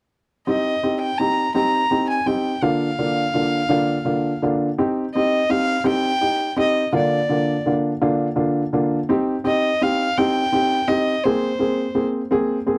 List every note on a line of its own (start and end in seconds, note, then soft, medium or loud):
0.47 0.73 C4 medium
0.47 0.73 D#4 medium
0.47 0.73 G4 medium
0.47 0.97 D#5 medium
0.83 1.09 C4 soft
0.83 1.09 D#4 soft
0.83 1.09 G4 medium
1.00 1.20 G5 medium
1.18 1.45 C4 soft
1.18 1.45 D#4 soft
1.18 1.46 G4 medium
1.18 1.54 A#5 medium
1.55 1.81 C4 medium
1.55 1.80 D#4 medium
1.55 1.81 G4 medium
1.55 2.04 A#5 medium
1.91 2.17 C4 medium
1.91 2.17 D#4 soft
1.91 2.17 G4 medium
2.09 2.28 G#5 medium
2.26 2.52 C4 medium
2.26 2.53 D#4 medium
2.26 2.53 G4 medium
2.26 2.64 G5 medium
2.62 2.88 D3 medium
2.62 2.88 A#3 medium
2.62 2.88 D4 medium
2.62 2.88 F4 medium
2.62 4.41 F5 medium
2.99 3.24 D3 medium
2.99 3.24 A#3 soft
2.99 3.24 D4 soft
2.99 3.24 F4 medium
3.34 3.60 D3 soft
3.34 3.60 A#3 medium
3.34 3.60 D4 soft
3.34 3.60 F4 medium
3.69 3.95 D3 medium
3.69 3.95 A#3 medium
3.69 3.96 D4 medium
3.69 3.96 F4 medium
4.05 4.31 D3 medium
4.05 4.32 A#3 medium
4.05 4.31 D4 soft
4.05 4.32 F4 medium
4.42 4.68 D3 medium
4.42 4.68 A#3 medium
4.42 4.68 D4 soft
4.42 4.68 F4 medium
4.78 5.04 C4 medium
4.78 5.04 D#4 medium
4.78 5.04 G4 medium
5.15 5.40 C4 medium
5.15 5.40 D#4 medium
5.15 5.40 G4 medium
5.15 5.52 D#5 medium
5.49 5.75 C4 medium
5.49 5.75 D#4 soft
5.49 5.75 G4 medium
5.49 5.85 F5 medium
5.84 6.10 C4 medium
5.84 6.11 D#4 medium
5.84 6.10 G4 medium
5.84 6.54 G5 medium
6.21 6.47 D#4 medium
6.21 6.47 G4 medium
6.56 6.82 C4 medium
6.56 6.83 D#4 medium
6.56 6.83 G4 medium
6.56 6.92 D#5 medium
6.93 7.18 D3 medium
6.93 7.19 A#3 medium
6.93 7.19 D4 medium
6.93 7.18 F4 medium
6.93 7.71 D5 medium
7.29 7.55 D3 medium
7.29 7.55 A#3 medium
7.29 7.55 D4 medium
7.29 7.55 F4 medium
7.66 7.91 D3 medium
7.66 7.91 A#3 medium
7.66 7.91 D4 medium
7.66 7.91 F4 medium
8.01 8.27 D3 medium
8.01 8.27 A#3 medium
8.01 8.27 D4 medium
8.01 8.27 F4 medium
8.36 8.62 D3 medium
8.36 8.62 A#3 medium
8.36 8.62 D4 medium
8.36 8.62 F4 medium
8.73 8.98 D3 medium
8.73 8.98 A#3 medium
8.73 8.98 D4 medium
8.73 8.99 F4 medium
9.09 9.34 C4 medium
9.09 9.34 D#4 medium
9.09 9.35 G4 medium
9.44 9.70 C4 medium
9.44 9.70 D#4 medium
9.44 9.70 G4 medium
9.44 9.84 D#5 medium
9.82 10.06 C4 medium
9.82 10.07 D#4 medium
9.82 10.07 G4 medium
9.82 10.19 F5 medium
10.18 10.42 C4 medium
10.18 10.43 D#4 medium
10.18 10.42 G4 medium
10.18 10.90 G5 medium
10.52 10.78 C4 medium
10.52 10.78 D#4 medium
10.52 10.78 G4 medium
10.88 11.13 C4 medium
10.88 11.14 D#4 medium
10.88 11.14 G4 medium
10.88 11.25 D#5 medium
11.24 11.50 A#3 medium
11.24 11.50 C4 medium
11.24 11.50 G#4 medium
11.24 12.04 C5 medium
11.59 11.85 A#3 medium
11.59 11.85 C4 soft
11.59 11.85 G#4 medium
11.95 12.21 A#3 medium
11.95 12.21 C4 medium
11.95 12.21 G#4 medium
12.31 12.56 A#3 medium
12.31 12.57 C4 medium
12.31 12.57 G#4 medium
12.66 12.78 A#3 medium
12.66 12.78 C4 medium
12.66 12.78 G#4 medium